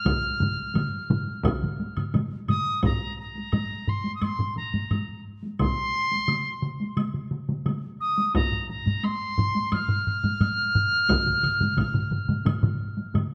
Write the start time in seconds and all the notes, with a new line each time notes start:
Already playing: F6
0.05 taiko, taiko low-mid, taiko mid, taiko high, high woodblock
0.23 taiko high
0.40 taiko low-mid, taiko mid, taiko high
0.75 taiko low-mid, taiko mid, taiko high, high woodblock
0.93 taiko high
1.10 taiko low-mid, taiko mid, taiko high
1.27 taiko high
1.44 taiko, taiko low-mid, taiko mid, taiko high, high woodblock
1.62 taiko low-mid, taiko mid, taiko high
1.80 taiko high
1.97 taiko low-mid, taiko mid, taiko high, high woodblock
2.14 taiko low-mid, taiko mid, taiko high, high woodblock
2.31 taiko high
2.48 D#6, taiko low-mid, taiko mid, taiko high, high woodblock
2.66 taiko high
2.83 A#5, taiko, taiko low-mid, taiko high, high woodblock
3.20 A#5
3.35 taiko high
3.52 taiko low-mid, taiko high, high woodblock
3.88 C6, taiko low-mid
4.04 taiko high
4.15 D#6
4.21 C6, taiko low-mid, taiko high, high woodblock
4.39 taiko low-mid
4.56 A#5, taiko low-mid
4.74 taiko low-mid, taiko high
4.91 taiko low-mid, taiko high, high woodblock
5.43 taiko high
5.59 C6, taiko, taiko mid, taiko high, high woodblock
6.11 taiko high
6.28 taiko mid, taiko high, high woodblock
6.62 taiko mid
6.80 taiko high
6.97 taiko mid, taiko high, high woodblock
7.14 taiko mid
7.31 taiko mid
7.49 taiko mid, taiko high
7.66 taiko mid, taiko high, high woodblock
8.00 D#6
8.18 taiko high
8.34 A#5, taiko, taiko low-mid, taiko high, high woodblock
8.52 taiko low-mid
8.69 A#5, taiko low-mid
8.86 taiko low-mid, taiko high
9.03 C6, taiko high, high woodblock
9.38 taiko low-mid
9.55 taiko high
9.72 F6, taiko low-mid, taiko high, high woodblock
9.89 taiko low-mid
10.07 taiko low-mid
10.23 taiko low-mid, taiko high
10.40 taiko low-mid, taiko high, high woodblock
10.75 taiko low-mid
11.09 taiko, taiko low-mid, taiko mid, taiko high, high woodblock
11.26 taiko low-mid, taiko mid
11.43 taiko low-mid, taiko mid, high woodblock
11.60 taiko low-mid, taiko mid, taiko high
11.77 taiko, taiko low-mid, taiko mid, taiko high, high woodblock
11.94 taiko low-mid, taiko mid
12.12 taiko low-mid, taiko mid
12.29 taiko low-mid, taiko mid, taiko high
12.46 taiko low-mid, taiko mid, taiko high, high woodblock
12.63 taiko low-mid, taiko mid
12.97 taiko high
13.14 taiko low-mid, taiko mid, taiko high, high woodblock